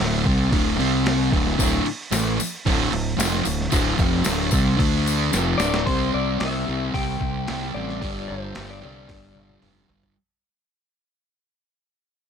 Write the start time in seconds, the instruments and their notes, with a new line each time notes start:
0.00 fingered electric bass D1, distorted electric guitar D2 A2 D3, snare
0.25 fingered electric bass C2, distorted electric guitar C3 G3 C4, kick, crash
0.50 fingered electric bass D1, distorted electric guitar D2 A2 D3, kick, crash
0.77 fingered electric bass C2, distorted electric guitar C3 G3 C4, crash
1.06 snare, crash
1.31 fingered electric bass D1, distorted electric guitar D2 A2 D3, kick, crash
1.47 snare
1.58 fingered electric bass D1, distorted electric guitar D2 A2 D3, kick, tambourine, crash
1.85 muted distorted electric guitar stroke, muted fingered electric bass stroke, crash
2.11 fingered electric bass A1, distorted electric guitar A2 E3 A3, snare, tambourine, crash
2.38 muted distorted electric guitar stroke, muted fingered electric bass stroke, tambourine, crash
2.66 fingered electric bass D1, distorted electric guitar D2 A2 D3, kick, crash
2.92 fingered electric bass D1, distorted electric guitar D2 A2, crash
3.17 fingered electric bass F1, distorted electric guitar F2 C3 F3, snare, tambourine, crash
3.34 snare
3.45 fingered electric bass D1, distorted electric guitar D2 A2, tambourine, crash
3.61 snare
3.70 fingered electric bass D1, distorted electric guitar D2 A2 D3, kick, tambourine, crash
3.97 fingered electric bass F1, distorted electric guitar F2 C3 F3, kick, tambourine, crash
4.24 fingered electric bass D1, distorted electric guitar D2 A2 D3, snare, tambourine, crash
4.51 fingered electric bass C2, distorted electric guitar C3 G3 C4, kick, tambourine, crash
4.77 fingered electric bass D2, distorted electric guitar D3 A3 D4, kick, tambourine, crash
5.06 tambourine, crash
5.31 fingered electric bass F1, distorted electric guitar F2 C3 F3, snare, tambourine
5.58 fingered electric bass D1, distorted electric guitar D2 A2 D3, electric slide guitar D5, snare, tambourine
5.74 snare
5.86 fingered electric bass C2, distorted electric guitar C3 G3 C4, electric slide guitar C5, kick, open hi-hat
6.14 fingered electric bass C2, electric slide guitar D5
6.39 fingered electric bass C2, distorted electric guitar C3 G3 C4, electric slide guitar E5, snare, open hi-hat
6.66 fingered electric bass C2, distorted electric guitar C3 G3 C4
6.93 fingered electric bass C2, distorted electric guitar C3 G3 C4, electric slide guitar G5, kick, open hi-hat
7.20 fingered electric bass C2, kick
7.47 fingered electric bass C2, distorted electric guitar C3 G3 C4, snare, open hi-hat
7.61 snare
7.74 fingered electric bass A1, distorted electric guitar C3 G3 C4, electric slide guitar D5
7.89 snare
8.01 fingered electric bass G1, distorted electric guitar G2 D3 G3, kick, open hi-hat
8.28 fingered electric bass G1, electric slide guitar C5
8.55 fingered electric bass G1, distorted electric guitar G2 D3 G3, snare, open hi-hat
8.71 electric slide guitar D5
8.80 fingered electric bass C2, distorted electric guitar G2 D3 G3
8.85 electric slide guitar D5
9.07 fingered electric bass G1, distorted electric guitar G2 D3 G3, kick, snare, open hi-hat
9.36 fingered electric bass G1, high tom
9.49 high tom
9.61 fingered electric bass F1, distorted electric guitar G2 D3 G3, open hi-hat, mid tom
9.88 fingered electric bass G1, distorted electric guitar G2 D3 G3, floor tom
10.03 floor tom